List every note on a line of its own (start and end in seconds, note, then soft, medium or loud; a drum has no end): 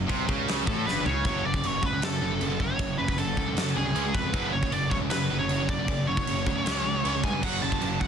0.07 0.27 C2 loud
0.07 0.27 C3 loud
0.07 kick loud
0.07 china medium
0.27 0.65 C#2 loud
0.27 0.66 C#3 loud
0.27 kick loud
0.48 snare loud
0.48 china medium
0.66 0.85 A1 medium
0.66 0.85 A2 loud
0.66 0.85 A4 medium
0.66 kick loud
0.86 1.04 G1 medium
0.86 1.05 G2 loud
0.86 1.05 B4 medium
0.86 snare medium
1.05 1.24 C#2 loud
1.05 1.24 C#3 medium
1.05 1.25 C#5 medium
1.05 floor tom medium
1.25 1.41 F#1 medium
1.25 1.43 F#2 medium
1.25 1.44 C#3 loud
1.25 1.44 F#3 loud
1.25 1.45 C#5 medium
1.25 kick loud
1.25 china medium
1.44 1.60 F#1 medium
1.44 1.53 F#2 medium
1.44 1.53 C#3 medium
1.44 1.67 D5 medium
1.54 1.63 F#2 medium
1.54 1.63 C#3 medium
1.54 kick medium
1.63 1.80 F#1 medium
1.63 1.81 F#2 medium
1.63 1.81 C#3 medium
1.63 1.86 C#5 medium
1.63 china medium
1.83 1.99 C#2 medium
1.83 1.92 F#2 medium
1.83 1.91 C#3 medium
1.83 2.04 B4 medium
1.83 kick medium
1.92 2.00 F#2 medium
1.92 2.01 C#3 medium
2.02 2.19 F#2 medium
2.02 2.18 F#2 medium
2.02 2.20 C#3 medium
2.02 2.63 A4 loud
2.02 snare loud
2.02 china medium
2.21 2.38 F#1 medium
2.21 2.30 F#2 medium
2.21 2.29 C#3 medium
2.31 2.39 F#2 medium
2.31 2.40 C#3 medium
2.40 2.57 F#1 loud
2.40 2.48 F#2 medium
2.40 2.49 C#3 medium
2.40 china medium
2.50 2.59 F#2 medium
2.50 2.59 C#3 medium
2.60 2.76 F#1 loud
2.60 2.69 F#2 medium
2.60 2.69 C#3 medium
2.60 2.96 C#5 medium
2.60 kick medium
2.70 2.78 F#2 medium
2.70 2.79 C#3 medium
2.79 2.96 F#1 medium
2.79 2.97 F#2 medium
2.79 2.97 C#3 medium
2.79 kick loud
2.79 china medium
2.98 3.16 F#1 medium
2.98 3.08 F#2 medium
2.98 3.08 C#3 medium
2.98 3.19 B4 medium
3.08 3.17 F#2 medium
3.08 3.18 C#3 medium
3.08 kick medium
3.18 3.35 F#1 loud
3.18 3.36 F#2 medium
3.18 3.36 C#3 medium
3.18 3.72 A4 medium
3.18 china medium
3.37 3.54 C#2 medium
3.37 3.47 F#2 medium
3.37 3.47 C#3 medium
3.37 kick medium
3.48 3.55 F#2 medium
3.48 3.56 C#3 medium
3.57 3.74 F#2 medium
3.57 3.73 F#2 medium
3.57 3.74 C#3 medium
3.57 snare loud
3.57 china medium
3.75 3.93 C2 medium
3.75 3.84 F#2 medium
3.75 3.83 C#3 medium
3.75 4.16 G#4 medium
3.85 3.95 F#2 medium
3.85 3.94 C#3 medium
3.95 4.12 C#2 medium
3.95 4.04 C#3 loud
3.95 4.04 G#3 loud
3.95 4.04 C#4 loud
3.95 china medium
4.05 4.14 C#3 medium
4.05 4.13 G#3 medium
4.14 4.31 F2 loud
4.14 4.23 C#3 medium
4.14 4.23 G#3 medium
4.14 4.53 B4 medium
4.14 kick medium
4.24 4.32 C#3 medium
4.24 4.33 G#3 medium
4.32 4.50 F#1 medium
4.32 4.51 F#2 medium
4.32 4.52 C#3 medium
4.32 4.52 F#3 loud
4.32 kick loud
4.32 china medium
4.53 4.69 F#1 medium
4.53 4.62 F#2 medium
4.53 4.61 C#3 medium
4.53 4.72 C#5 medium
4.63 4.70 F#2 medium
4.63 4.71 C#3 medium
4.63 kick medium
4.71 4.89 F#1 medium
4.71 4.89 F#2 medium
4.71 4.90 C#3 medium
4.71 4.90 D5 loud
4.71 china medium
4.91 5.08 C#2 medium
4.91 5.00 F#2 medium
4.91 4.99 C#3 medium
4.91 4.96 C#5 medium
4.91 kick medium
5.01 5.08 F#2 medium
5.01 5.09 C#3 medium
5.09 5.28 F#2 medium
5.09 5.28 C#3 medium
5.09 5.39 B4 loud
5.09 snare loud
5.09 china medium
5.31 5.47 F#1 medium
5.31 5.39 F#2 medium
5.31 5.40 C#3 medium
5.39 5.50 F#2 medium
5.39 5.50 C#3 medium
5.39 5.67 C#5 loud
5.49 5.66 F#1 loud
5.49 5.59 F#2 medium
5.49 5.58 C#3 medium
5.49 china medium
5.59 5.69 F#2 medium
5.59 5.68 C#3 medium
5.69 5.85 F#1 loud
5.69 5.78 F#2 medium
5.69 5.78 C#3 medium
5.69 6.07 D5 medium
5.69 kick loud
5.79 5.88 F#2 medium
5.79 5.89 C#3 medium
5.88 6.05 F#1 medium
5.88 6.06 F#2 medium
5.88 6.07 C#3 loud
5.88 kick loud
5.88 china medium
6.07 6.24 F#1 medium
6.07 6.18 F#2 medium
6.07 6.18 C#3 medium
6.07 7.27 C#5 loud
6.17 6.27 F#2 medium
6.17 6.28 C#3 medium
6.17 kick medium
6.27 6.44 F#1 medium
6.27 6.45 F#2 medium
6.27 6.45 C#3 medium
6.27 china medium
6.46 6.63 D2 loud
6.46 6.57 F#2 medium
6.46 6.56 C#3 medium
6.46 kick medium
6.58 6.67 F#2 medium
6.58 6.66 C#3 medium
6.66 6.83 C#2 medium
6.66 6.85 C#3 loud
6.66 6.84 G#3 loud
6.66 6.85 C#4 loud
6.66 snare loud
6.66 china medium
6.86 7.02 C#2 medium
6.86 6.95 C#3 medium
6.86 6.95 G#3 medium
6.96 7.04 C#3 medium
6.96 7.05 G#3 medium
7.04 7.21 C#2 medium
7.04 7.13 C#3 medium
7.04 7.13 G#3 loud
7.04 7.14 C#4 loud
7.04 china medium
7.14 7.23 C#3 medium
7.14 7.22 G#3 medium
7.24 7.40 G2 loud
7.24 7.32 C#3 medium
7.24 7.32 G#3 medium
7.24 7.42 G#5 loud
7.24 kick medium
7.33 7.42 C#3 medium
7.33 7.43 G#3 medium
7.43 7.60 F#1 medium
7.43 7.61 F#2 loud
7.43 7.61 C#3 loud
7.43 7.61 F#3 loud
7.43 7.62 F#5 loud
7.43 kick loud
7.43 china medium
7.43 crash loud
7.62 7.79 F#1 medium
7.62 7.70 F#2 medium
7.62 7.71 C#3 medium
7.62 7.80 A5 loud
7.72 7.80 F#2 medium
7.72 7.81 C#3 medium
7.72 kick medium
7.81 7.98 F#1 medium
7.81 7.99 F#2 medium
7.81 7.99 C#3 medium
7.81 8.00 A5 loud
7.81 china medium
8.01 8.07 C#2 medium
8.01 8.07 F#2 medium
8.01 8.07 C#3 medium
8.01 8.07 F#5 loud
8.01 kick medium